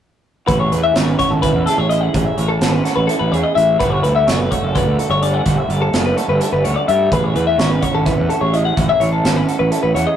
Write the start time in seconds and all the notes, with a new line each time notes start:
0.47 A1 A2 F#4 B4, kick, closed hi-hat
0.59 G#4 C#5
0.70 E2 E3 B4, closed hi-hat
0.83 E5
0.94 G#1 C#4 C#5, snare, closed hi-hat
1.07 B4
1.19 F#4 C#5, kick, snare, closed hi-hat
1.30 G#1 A4
1.42 E4 B4, kick, closed hi-hat
1.54 E2
1.66 G#4 A4, snare, closed hi-hat
1.78 A1 C#5
1.90 E4 D#5, closed hi-hat
2.01 F#5
2.14 A1 A2 G#4, kick, closed hi-hat
2.25 E5
2.37 A1 E3 C#5, closed hi-hat
2.49 A4
2.61 G#1 C#4, snare, closed hi-hat
2.73 B4
2.84 F#4 A4, snare, closed hi-hat
2.96 A1 B4
3.07 E4 A4, closed hi-hat
3.19 A1 B4
3.32 E2 G#4 C#5, closed hi-hat
3.44 D#5
3.55 A1 E4 E5, closed hi-hat
3.79 G1 G2 F#4 B4, kick, closed hi-hat
3.91 C#5
4.03 D2 G3 B4, closed hi-hat
4.16 E5
4.27 F#1 A3 C#5, snare, closed hi-hat
4.39 B4
4.51 F#4 C#5, kick, closed hi-hat
4.62 F#1 A4
4.75 D4 B4, kick, closed hi-hat
4.86 D2
4.99 F#4 A4, closed hi-hat
5.09 G1 C#5
5.22 D4 D5, closed hi-hat
5.34 F#5
5.45 G1 G2 F#4, kick, closed hi-hat
5.58 E5
5.69 G1 G3 D5, closed hi-hat
5.82 A4
5.93 F#1 A3, snare, closed hi-hat
6.06 B4
6.16 F#4 A4, closed hi-hat
6.28 G1 B4
6.40 D4 A4, closed hi-hat
6.52 G1 B4
6.64 D2 F#4 C#5, closed hi-hat
6.76 D5
6.87 G2 D4 E5, closed hi-hat
7.10 A1 A2 G#4 B4, kick, closed hi-hat
7.24 C#5
7.33 E2 E3 B4, closed hi-hat
7.47 E5
7.58 G#1 C#4 C#5, snare, closed hi-hat
7.70 B4
7.81 F#4 C#5, kick, closed hi-hat
7.94 G#1 A4
8.05 E4 B4, kick, closed hi-hat
8.18 E2
8.28 F#4 A4, closed hi-hat
8.40 A1 G#4 C#5
8.53 E4 D#5, closed hi-hat
8.65 F#5
8.76 A1 A2 F#4, kick, closed hi-hat
8.88 G#4 E5
9.00 A1 E3 C#5, closed hi-hat
9.12 A4
9.24 G#1 C#4, snare, closed hi-hat
9.36 B4
9.47 F#4 A4, closed hi-hat
9.59 A1 B4
9.71 E4 A4, closed hi-hat
9.83 A1 B4
9.94 E2 F#4 C#5, closed hi-hat
10.06 G#4 D#5